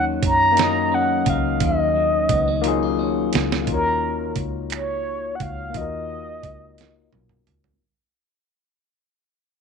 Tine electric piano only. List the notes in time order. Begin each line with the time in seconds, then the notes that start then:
Already playing: F#3 A#3 C#4 D#4 C#5
0.52 A#3 D#4
0.58 F#3 C#4
0.64 D#5
2.62 A#3 D#4 F4
2.66 F#3 G#4
3.62 A#3 D#4
3.68 F4 F#4
3.74 C#5
5.70 A#3 D#4
5.76 F4 F#4
5.81 A#4